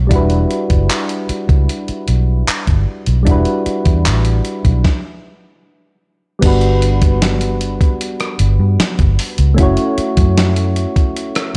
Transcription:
Already playing: B1
0.07 E1 G3 D4, kick, closed hi-hat
0.11 E4 F#4
0.15 B4
0.30 closed hi-hat
0.51 closed hi-hat
0.70 F#1, kick, closed hi-hat
0.90 clap, closed hi-hat
1.09 closed hi-hat
1.29 muted fingered electric bass stroke, closed hi-hat
1.49 C#2, kick, closed hi-hat
1.69 closed hi-hat
1.88 muted fingered electric bass stroke, closed hi-hat
2.07 B1, closed hi-hat
2.48 clap, closed hi-hat
2.67 G1, kick, closed hi-hat
3.06 B1, closed hi-hat
3.23 E1 G3 D4, kick, closed hi-hat
3.27 E4 F#4
3.31 B4
3.45 closed hi-hat
3.66 muted fingered electric bass stroke, closed hi-hat
3.85 E2, kick, closed hi-hat
4.06 A1, clap, closed hi-hat
4.25 closed hi-hat
4.45 closed hi-hat
4.65 B1, kick, closed hi-hat
4.84 kick, snare
6.39 G1 G3 B3, kick, closed hi-hat, crash
6.43 D4 F#4
6.47 B4
6.61 closed hi-hat
6.82 closed hi-hat
7.02 kick, closed hi-hat
7.22 snare, closed hi-hat
7.41 closed hi-hat
7.61 closed hi-hat
7.81 kick, closed hi-hat
8.01 closed hi-hat
8.20 cross-stick, closed hi-hat
8.39 G1, closed hi-hat
8.59 G2
8.79 muted fingered electric bass stroke, snare, closed hi-hat
8.99 G1, kick, closed hi-hat
9.19 open hi-hat
9.38 C#2, closed hi-hat
9.54 A3 C#4, kick, closed hi-hat
9.59 E4 F#4
9.63 C#5
9.77 closed hi-hat
9.98 muted fingered electric bass stroke, closed hi-hat
10.17 F#2, kick, closed hi-hat
10.37 snare, closed hi-hat
10.56 closed hi-hat
10.76 closed hi-hat
10.96 kick, closed hi-hat
11.17 closed hi-hat
11.35 cross-stick, closed hi-hat

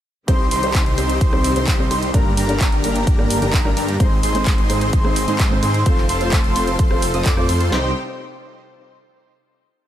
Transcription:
0.27 C2 C3 D#3 G3 C4 D#4 G4 C5 C6, kick, closed hi-hat
0.51 C2 D#4 G4 C5 C6, open hi-hat
0.62 C3 G3 C4 D#4 C5, closed hi-hat
0.74 kick, clap, closed hi-hat
0.86 C2 D#4 G4 C5 C6, closed hi-hat
0.97 C3 G3 C4 D#4 C5, cross-stick, open hi-hat
1.10 closed hi-hat
1.21 C2 D#4 G4 C5 C6, kick, closed hi-hat
1.32 C3 G3 C4 D#4 C5, cross-stick
1.44 open hi-hat
1.55 C2 C3 G3 C4 D#4 G4 C5 C6, closed hi-hat
1.67 kick, clap, closed hi-hat
1.79 C3 G3 C4 D#4 C5
1.91 C2 D#4 G4 C5 C6, cross-stick, open hi-hat
2.03 closed hi-hat
2.13 G1 G2 D3 G3 A#3 D4 G4 A#4 A#5, kick, closed hi-hat
2.37 G1 D4 G4 A#4 A#5, open hi-hat
2.48 G2 G3 A#3 D4 A#4, closed hi-hat
2.60 kick, clap, closed hi-hat
2.72 G1 D4 G4 A#4 A#5, closed hi-hat
2.83 G2 G3 A#3 D4 A#4, open hi-hat
2.96 closed hi-hat
3.07 G1 D4 G4 A#4 A#5, kick, closed hi-hat
3.18 G2 G3 A#3 D4 A#4, cross-stick
3.30 open hi-hat
3.41 G1 G2 G3 A#3 D4 G4 A#4 A#5, closed hi-hat
3.53 kick, clap, closed hi-hat
3.65 G2 G3 A#3 D4 A#4, cross-stick
3.77 G2 D4 G4 A#4 A#5, open hi-hat
3.89 closed hi-hat
3.99 G#1 G#2 D#3 G#3 C4 D#4 G#4 C5 C6, kick, closed hi-hat
4.23 G#1 D#4 G#4 C5 C6, open hi-hat
4.34 G#2 G#3 C4 D#4 C5, closed hi-hat
4.46 kick, clap, closed hi-hat
4.58 G#1 D#4 G#4 C5 C6, closed hi-hat
4.69 G#2 G#3 C4 D#4 C5, cross-stick, open hi-hat
4.81 closed hi-hat
4.93 G#1 D#4 G#4 C5 C6, kick, closed hi-hat
5.04 G#2 G#3 C4 D#4 C5, cross-stick
5.16 open hi-hat
5.27 G#2 G#3 C4 D#4 G#4 C5 C6, closed hi-hat
5.39 kick, clap, closed hi-hat
5.51 G#2 G#3 C4 D#4 C5
5.63 G#2 D#4 G#4 C5 C6, cross-stick, open hi-hat
5.74 closed hi-hat
5.85 F1 F3 A3 C4 F4 A4 C5 C6, kick, closed hi-hat
5.97 clap
6.09 F1 F4 A4 C5 C6, open hi-hat
6.20 A3 C4 F4 C5, closed hi-hat
6.32 kick, clap, closed hi-hat
6.44 F1 F4 A4 C5 C6, closed hi-hat
6.55 A3 C4 F4 C5, open hi-hat
6.67 closed hi-hat
6.79 F1 A4 C6, kick, closed hi-hat
6.90 A3 C4 F4 C5, cross-stick
7.02 open hi-hat
7.13 F1 A3 C4 F4 A4 C5 D#5 D#6, closed hi-hat
7.25 F2 A4 D5 D6, kick, clap, closed hi-hat
7.37 A3 C4 F4 C5, cross-stick
7.49 F2 F4 A4 C5 C6, open hi-hat
7.61 closed hi-hat
7.70 C2 C3 G3 C4 D#4 G4 C5 G5 C6, snare, clap

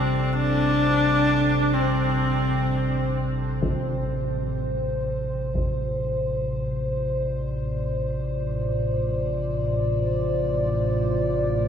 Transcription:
Already playing: A1 C3 G3 C4 E4 A4 C5
0.33 D4
1.74 C4
3.62 A2, taiko
5.32 F4
5.54 taiko
6.77 D5

